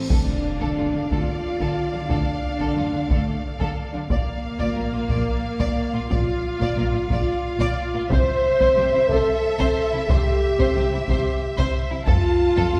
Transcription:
0.00 cymbal swell soft
0.09 0.17 D2 soft
0.09 0.16 D3 soft
0.09 1.08 D4 medium
0.09 0.26 A4 soft
0.09 4.06 D5 soft
0.09 4.06 F5 soft
0.09 taiko medium
0.09 impact soft
0.60 0.66 D3 soft
0.60 0.76 A4 medium
0.60 taiko medium
0.76 0.84 D2 soft
0.76 0.83 D3 soft
0.76 0.84 F4 soft
0.93 1.00 D3 soft
0.93 1.00 D4 soft
1.10 1.17 D2 soft
1.10 1.17 D3 medium
1.10 2.10 F4 soft
1.10 2.10 F4 medium
1.10 1.26 A4 medium
1.10 taiko medium
1.59 1.66 D3 medium
1.59 1.76 A4 soft
1.59 taiko medium
1.93 2.00 D3 soft
1.93 2.00 D4 soft
2.09 2.17 D2 soft
2.09 2.16 D3 soft
2.09 3.08 D4 medium
2.09 2.25 A4 medium
2.09 taiko medium
2.60 2.66 D3 medium
2.60 2.75 A4 soft
2.60 taiko medium
2.76 2.83 D2 soft
2.76 2.83 D3 soft
2.76 2.84 F4 soft
2.92 2.99 D3 soft
2.92 2.99 D4 soft
3.10 3.16 D2 medium
3.10 3.16 D3 medium
3.10 3.43 A3 soft
3.10 3.43 A3 medium
3.10 3.25 A4 medium
3.10 taiko medium
3.59 3.66 D3 medium
3.59 3.75 A4 medium
3.59 taiko medium
3.93 4.00 D3 soft
3.93 4.00 D4 medium
4.10 4.16 A#1 medium
4.10 4.16 A#2 medium
4.10 6.07 A#3 medium
4.10 4.26 D5 medium
4.10 8.07 F5 medium
4.10 taiko medium
4.58 4.66 A#2 medium
4.58 4.74 D5 medium
4.58 taiko medium
4.75 4.82 A#1 soft
4.75 4.82 A#2 soft
4.75 4.82 A#4 soft
4.91 4.98 A#2 soft
4.91 4.99 F4 soft
5.08 5.16 A#1 medium
5.08 5.15 A#2 medium
5.08 5.25 D5 medium
5.08 taiko medium
5.59 5.67 A#2 medium
5.59 5.76 D5 medium
5.59 taiko medium
5.93 6.00 A#2 soft
5.93 6.00 F4 medium
6.09 6.18 A#1 medium
6.09 6.17 A#2 medium
6.09 7.07 F4 medium
6.09 7.08 F4 medium
6.09 6.26 D5 soft
6.09 taiko medium
6.60 6.67 A#2 medium
6.60 6.76 D5 medium
6.60 taiko medium
6.77 6.83 A#1 medium
6.77 6.83 A#2 medium
6.77 6.84 A#4 soft
6.93 7.00 A#2 medium
6.93 7.01 F4 soft
7.08 7.16 A#1 medium
7.08 7.17 A#2 medium
7.08 8.08 F4 loud
7.08 8.09 F4 medium
7.08 7.26 D5 medium
7.08 taiko medium
7.59 7.66 A#2 medium
7.59 7.76 D5 medium
7.59 taiko medium
7.94 8.01 A#2 medium
7.94 8.01 F4 medium
8.10 8.18 C2 medium
8.10 8.17 C3 medium
8.10 9.08 C5 loud
8.10 9.10 C5 medium
8.10 8.26 C5 medium
8.10 12.08 E5 medium
8.10 taiko loud
8.59 8.66 C3 medium
8.59 8.76 C5 medium
8.59 taiko medium
8.76 8.84 C2 medium
8.76 8.83 C3 medium
8.76 8.84 G4 soft
8.93 8.99 C3 medium
8.93 9.00 E4 medium
9.09 9.17 C2 medium
9.09 9.16 C3 medium
9.09 10.09 A4 loud
9.09 10.07 A4 medium
9.09 9.26 C5 medium
9.09 taiko medium
9.59 9.66 C3 medium
9.59 9.75 C5 medium
9.59 taiko medium
9.93 9.99 C3 medium
9.93 9.99 E4 medium
10.07 10.16 C2 medium
10.07 10.15 C3 medium
10.07 10.91 G4 medium
10.07 11.07 G4 medium
10.07 10.24 C5 medium
10.07 taiko loud
10.58 10.65 C3 medium
10.58 10.74 C5 medium
10.58 taiko medium
10.75 10.82 C2 medium
10.75 10.82 C3 medium
10.75 10.82 G4 medium
10.92 10.98 C3 medium
10.92 10.99 E4 soft
11.08 11.15 C2 medium
11.08 11.15 C3 medium
11.08 11.41 G4 medium
11.08 11.23 C5 medium
11.08 taiko medium
11.57 11.64 C3 medium
11.57 11.73 C5 medium
11.57 taiko medium
11.90 11.97 C3 soft
11.90 11.97 E4 medium
12.06 12.14 F1 medium
12.06 12.14 F2 medium
12.06 12.80 F4 loud
12.06 12.80 F4 medium
12.06 12.22 A4 medium
12.06 12.80 F5 medium
12.06 12.80 A5 medium
12.06 taiko medium
12.56 12.64 F2 medium
12.56 12.72 A4 medium
12.56 taiko medium
12.72 12.80 F1 soft
12.72 12.80 F2 medium
12.72 12.79 F4 soft

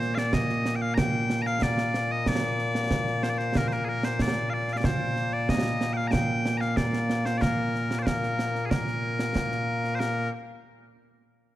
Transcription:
0.00 10.30 A#2 medium
0.00 10.30 A#3 medium
0.00 0.15 C5 loud
0.00 snare soft
0.15 0.34 D5 medium
0.15 0.18 F5 medium
0.15 snare medium
0.33 0.76 D#5 medium
0.33 concert bass drum medium
0.33 snare loud
0.49 snare soft
0.66 snare medium
0.76 0.82 G5 medium
0.82 0.94 F5 loud
0.94 1.42 G5 loud
0.94 0.98 A#5 loud
0.94 concert bass drum medium
0.94 snare loud
1.30 snare medium
1.42 1.46 A#5 loud
1.46 1.63 F5 loud
1.46 snare soft
1.62 2.11 D5 loud
1.62 concert bass drum medium
1.62 snare medium
1.78 snare medium
1.94 snare medium
2.11 2.28 D#5 loud
2.26 3.23 D5 loud
2.26 concert bass drum medium
2.26 snare medium
2.59 snare soft
2.75 snare medium
2.91 concert bass drum medium
2.91 snare loud
3.07 snare soft
3.23 3.30 C5 medium
3.23 snare medium
3.30 3.38 D5 medium
3.38 3.57 C5 medium
3.38 snare soft
3.55 3.68 A#4 medium
3.55 concert bass drum medium
3.55 snare loud
3.68 3.73 C5 medium
3.68 snare soft
3.73 3.85 A#4 medium
3.85 3.89 G#4 medium
3.89 4.05 A#4 medium
4.03 4.22 C5 medium
4.03 snare medium
4.19 4.50 D5 medium
4.19 concert bass drum medium
4.19 snare loud
4.36 snare soft
4.50 4.73 D5 medium
4.50 4.54 F5 medium
4.68 snare soft
4.73 4.77 F5 medium
4.77 4.85 D5 medium
4.84 5.33 C5 loud
4.84 concert bass drum medium
4.84 snare loud
5.16 snare soft
5.33 5.49 D5 medium
5.49 5.93 D#5 medium
5.49 concert bass drum medium
5.49 snare loud
5.65 snare soft
5.81 snare medium
5.93 6.07 F5 medium
5.93 5.97 G5 medium
6.07 6.57 G5 loud
6.07 6.11 A#5 loud
6.13 concert bass drum medium
6.13 snare loud
6.46 snare medium
6.57 6.77 F5 medium
6.57 6.61 A#5 medium
6.61 snare soft
6.77 7.26 D5 medium
6.77 concert bass drum medium
6.77 snare loud
6.93 snare medium
7.10 snare medium
7.26 7.38 C5 medium
7.26 snare medium
7.38 7.99 A#4 medium
7.38 7.41 D5 medium
7.42 concert bass drum medium
7.42 snare medium
7.75 snare soft
7.91 snare medium
7.99 8.06 C5 medium
7.99 8.03 D5 medium
8.06 8.66 A#4 medium
8.06 concert bass drum medium
8.06 snare loud
8.23 snare soft
8.39 snare medium
8.55 snare soft
8.66 8.70 G#4 medium
8.70 9.95 A#4 medium
8.70 concert bass drum medium
8.70 snare loud
8.87 snare soft
9.19 snare medium
9.36 concert bass drum medium
9.36 snare medium
9.52 snare soft
9.84 snare soft
9.95 9.99 C5 medium
9.99 10.30 A#4 medium
9.99 snare medium

